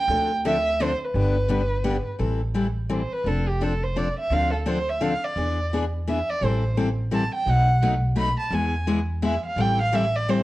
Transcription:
0.00 G5
0.08 D2 D3 F3 C4 D4 A4
0.45 D3 F3 C4 D4 A4 E5
0.80 D3 F3 C4 D4 A4 C5
1.04 B4
1.14 G1 D3 G3 B3 D4 G4
1.49 D3 G3 B3 D4 G4
1.84 D3 G3 B3 D4 G4
2.19 A1 E3 G3 C4 E4 A4
2.54 E3 G3 C4 E4 A4
2.90 E3 G3 C4 E4 A4 C5
3.13 B4
3.24 F1 F3 C4 D4 A4
3.48 G4
3.61 F3 C4 D4 A4
3.83 C5
3.96 F3 C4 D4 A4 D5
4.18 E5
4.30 D2 D3 F3 C4 D4 A4 F5
4.53 A4
4.66 D3 F3 C4 D4 A4 C5
4.89 E5
5.00 D3 F3 C4 D4 A4 F5
5.24 D5
5.36 E2 E3 B3 D4 G#4
5.73 E3 B3 D4 G#4
6.07 E3 B3 D4 G#4 E5
6.30 D5
6.41 A1 E3 G3 C4 E4 A4 C5
6.77 E3 G3 C4 E4 A4
7.11 E3 G3 C4 E4 A4 A5
7.34 G5
7.46 B1 B2 F#3 A3 D#4 F#4 F#5
7.83 B2 F#3 A3 D#4 F#4
8.16 B2 F#3 A3 D#4 F#4 B5
8.40 A5
8.51 E2 E3 G#3 B3 E4 G#4 G#5
8.87 E3 G#3 B3 E4 G#4
9.22 E3 G#3 B3 E4 G#4 E5
9.46 F5
9.56 A1 E3 G3 C4 E4 A4 G5
9.82 F5
9.92 E3 G3 C4 E4 A4 E5
10.15 D5
10.28 E3 G3 C4 E4 A4 C5

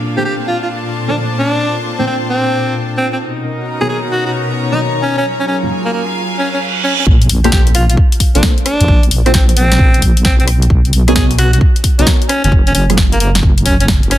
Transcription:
Already playing: A#2 A#3 C4 D4 F4 A4 F5
0.17 A#3 D4 F4 G4 A4 C5
0.21 G4 A5
0.48 F4
0.63 F4
0.79 C5
1.08 A#3 D4 F4 A4 C5
1.39 D4
1.99 A#3 C4 D4 F4 A4 C5
2.07 C4
2.29 C4
2.97 C4
3.13 C4
3.20 B2 C#4 D#4 F#4 A#4
3.66 B3 A#5
3.80 B3 D#4 F#4 G#4 A#4 C#5
3.89 G#4
4.12 F#4 C#5
4.26 F#4
4.71 B3 D#4 F#4 A#4 C#5
5.02 C#4
5.17 C#4
5.25 F#3 C#4 F4 G#4
5.40 C#4
5.48 C#4
5.62 F#3 A#3 C#4 F4 G#4 A#4 G#5
5.85 A#3
5.93 A#3
6.05 F5
6.16 reverse cymbal
6.39 C#4
6.54 C#4
6.84 C#4
6.99 C#4
7.07 A#1, kick, sub drop
7.22 closed hi-hat
7.29 A#1, open hi-hat
7.44 A#3 D4 F4 G4 A4 C5, cross-stick, closed hi-hat
7.52 G4, kick, snare
7.67 closed hi-hat
7.75 F4, cross-stick, open hi-hat
7.90 F4, closed hi-hat
7.97 kick
8.12 closed hi-hat
8.20 kick, open hi-hat
8.35 A#1 A#3 D4 F4 A4 C5, closed hi-hat
8.43 kick, snare
8.58 closed hi-hat
8.66 D4, cross-stick, open hi-hat
8.81 F2, closed hi-hat
8.88 A#1, kick
9.03 closed hi-hat
9.11 A#1, open hi-hat
9.26 A#3 C4 D4 F4 A4 C5, cross-stick, closed hi-hat
9.34 C4, kick, snare
9.49 closed hi-hat
9.57 C4, open hi-hat
9.72 snare, closed hi-hat
9.79 A#1, kick
9.94 closed hi-hat
10.02 A#1, kick, open hi-hat
10.17 closed hi-hat
10.25 C4, kick, snare
10.40 B1 C4, closed hi-hat
10.48 cross-stick, open hi-hat
10.62 closed hi-hat
10.70 B1, kick
10.85 closed hi-hat
10.93 B1, open hi-hat
11.08 B3 D#4 F#4 G#4 A#4 C#5, cross-stick, closed hi-hat
11.16 G#4, kick, snare
11.31 closed hi-hat
11.39 F#4, cross-stick, open hi-hat
11.53 F#4, closed hi-hat
11.61 kick
11.76 closed hi-hat
11.84 kick, open hi-hat
11.99 B1 B3 D#4 F#4 A#4 C#5, closed hi-hat
12.06 kick, snare
12.22 closed hi-hat
12.29 C#4, cross-stick, open hi-hat
12.44 F#1 C#4, closed hi-hat
12.52 F#1, kick
12.67 C#4, closed hi-hat
12.75 F#1 C#4, open hi-hat
12.89 F#3 A#3 C#4 F4 G#4, cross-stick, closed hi-hat
12.97 kick, snare
13.12 A#3, closed hi-hat
13.20 A#3, open hi-hat
13.35 snare, closed hi-hat
13.43 F#1, kick
13.58 closed hi-hat
13.66 F#1 C#4, kick, open hi-hat
13.80 C#4, closed hi-hat
13.88 kick, snare
14.03 F#1, closed hi-hat
14.11 C#4, cross-stick, open hi-hat

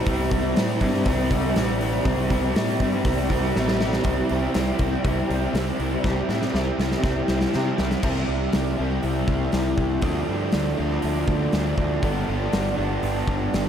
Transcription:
0.06 C2 C3 G3 C4 E4, kick, open hi-hat
0.31 C2 G3 C4 E4, kick, open hi-hat
0.55 A2 C3 G3 C4 E4, snare, open hi-hat
0.80 G2 C3 G3 C4 E4, kick, open hi-hat
0.94 snare
1.05 C2 C3 G3 C4 E4, kick, open hi-hat
1.30 C2 C3 G3 C4 E4, kick, open hi-hat
1.54 A1 C3 G3 C4 E4, snare, open hi-hat
1.79 G3 C4 E4, open hi-hat
2.04 C2 C3 G3 C4 E4, kick, open hi-hat
2.30 C2 G3 C4 E4, kick, open hi-hat
2.54 A2 C3 G3 C4 E4, snare, open hi-hat
2.80 G2 C3 G3 C4 E4, kick, open hi-hat
3.05 C2 C3 G3 C4 E4, kick, open hi-hat
3.29 C2 C3 G3 C4 E4, kick, open hi-hat
3.55 A1 C3 G3 C4 E4, snare
3.68 snare
3.80 G3 C4 E4, snare
3.93 snare
4.04 C2 C3 G3 C4 E4, kick, open hi-hat
4.29 C2 G3 C4 E4, open hi-hat
4.54 C2 C3 G3 C4 E4, snare, open hi-hat
4.79 C2 G3 C4 E4, kick, open hi-hat
5.05 C2 C3 G3 C4 E4, kick, open hi-hat
5.30 C2 G3 C4 E4, open hi-hat
5.54 C2 C3 G3 C4 E4, snare, open hi-hat
5.79 C2 G3 C4 E4, open hi-hat
6.04 C2 C3 G3 C4 E4, kick, snare
6.29 A2 G3 C4 E4, snare
6.42 snare
6.54 C2 C3 G3 C4 E4, snare
6.78 C2 G3 C4 E4, snare
6.92 snare
7.03 C2 C3 G3 C4 E4, kick, snare
7.28 C2 G3 C4 E4, snare
7.41 snare
7.54 C3 G3 C4 E4, snare
7.77 C2 G3 C4 E4, snare
7.91 snare
8.03 C2 C3 G3 C4 E4, kick, crash
8.28 C2
8.53 C2, snare, open hi-hat
8.78 C2 C3 G3 C4 E4
9.03 C2, open hi-hat
9.28 C2, kick
9.52 C2, snare, open hi-hat
9.78 C2, kick
10.01 D2 D3 F3 A3 D4, kick, open hi-hat
10.29 G2
10.52 D2, snare, open hi-hat
10.76 D2 D3 F3 A3 D4
11.02 D2, open hi-hat
11.28 D2, kick
11.52 D2, snare, open hi-hat
11.78 D2, kick
12.02 G1 G2 D3 G3 B3 D4, kick, open hi-hat
12.28 G1
12.53 G1, snare, open hi-hat
12.77 G1 G2 D3 G3 B3 D4
13.03 G1, open hi-hat
13.28 G1, kick
13.54 G1, snare, open hi-hat

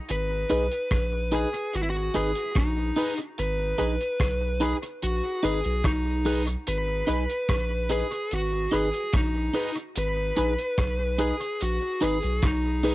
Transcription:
0.09 G#1 B4, closed hi-hat
0.50 B1 D#4 G#4 B4, closed hi-hat
0.72 closed hi-hat
0.91 A#1, kick, cross-stick, closed hi-hat
1.32 D#4 G#4 B4, closed hi-hat
1.54 closed hi-hat
1.73 G#1 F#4, closed hi-hat
1.83 E4
1.90 F#4
2.14 G#1 D#4 G#4 B4, closed hi-hat
2.35 G#4 B4, closed hi-hat
2.55 A#1 D#4, kick, cross-stick, closed hi-hat
2.96 D#4 G#4 B4, open hi-hat
3.18 closed hi-hat
3.38 G#1 B4, closed hi-hat
3.78 A#1 D#4 G#4 B4, closed hi-hat
4.01 closed hi-hat
4.20 B1, kick, cross-stick, closed hi-hat
4.60 D#4 G#4 B4, closed hi-hat
4.83 closed hi-hat
5.02 A#1 F#4, closed hi-hat
5.43 G#1 D#4 G#4 B4, closed hi-hat
5.64 B1 G#4 B4, closed hi-hat
5.84 B1 D#4, kick, cross-stick, closed hi-hat
6.25 D#4 G#4 B4, open hi-hat
6.47 closed hi-hat
6.67 G#1 B4, closed hi-hat
7.07 B1 D#4 G#4 B4, closed hi-hat
7.30 closed hi-hat
7.49 A#1, kick, cross-stick, closed hi-hat
7.89 D#4 G#4 B4, closed hi-hat
8.12 closed hi-hat
8.31 G#1 F#4, closed hi-hat
8.71 G#1 D#4 G#4 B4, closed hi-hat
8.93 closed hi-hat
9.13 A#1 D#4, kick, cross-stick, closed hi-hat
9.54 D#4 G#4 B4, open hi-hat
9.76 closed hi-hat
9.96 G#1 B4, closed hi-hat
10.37 A#1 D#4 G#4 B4, closed hi-hat
10.59 closed hi-hat
10.78 B1, kick, cross-stick, closed hi-hat
11.18 D#4 G#4 B4, closed hi-hat
11.41 closed hi-hat
11.61 A#1 F#4, closed hi-hat
12.01 G#1 D#4 G#4 B4, closed hi-hat
12.22 B1 G#4 B4, closed hi-hat
12.42 B1 D#4, kick, cross-stick, closed hi-hat
12.83 D#4 G#4 B4, open hi-hat

